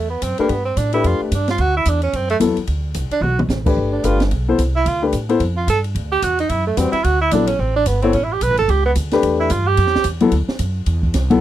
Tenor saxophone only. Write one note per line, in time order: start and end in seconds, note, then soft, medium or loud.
0.10 0.25 B3 medium
0.23 0.39 C4 medium
0.40 0.51 A#3 medium
0.49 0.65 B3 medium
0.65 0.79 C4 medium
0.77 0.93 D4 medium
0.94 1.08 E4 medium
1.06 1.22 F4 medium
1.23 1.36 A3 soft
1.35 1.49 D4 medium
1.51 1.62 F4 medium
1.61 1.76 F#4 loud
1.77 1.91 E4 medium
1.89 2.03 D4 medium
2.03 2.17 C#4 medium
2.16 2.30 C4 medium
2.30 2.37 A3 medium
3.12 3.24 D4 medium
3.22 3.39 F#4 loud
3.92 4.06 D4 medium
4.05 4.21 F4 loud
4.76 4.89 E4 loud
4.88 5.03 F4 medium
5.57 5.68 F4 medium
5.70 5.79 A4 loud
6.12 6.25 G4 loud
6.24 6.39 F#4 medium
6.40 6.52 D#4 loud
6.50 6.66 E4 medium
6.67 6.80 A3 medium
6.78 6.91 C4 medium
6.92 7.05 E4 loud
7.04 7.21 F#4 loud
7.21 7.34 E4 loud
7.33 7.48 D4 medium
7.47 7.61 C#4 medium
7.60 7.76 C4 medium
7.76 7.89 D4 loud
7.87 8.01 B3 medium
8.02 8.16 C4 medium
8.14 8.25 C#4 medium
8.24 8.34 E4 medium
8.33 8.44 G4 medium
8.43 8.58 B4 loud
8.59 8.72 A4 loud
8.70 8.85 G4 medium
8.86 8.92 B3 medium
9.40 9.53 E4 loud
9.51 9.69 F4 loud
9.67 10.06 G4 loud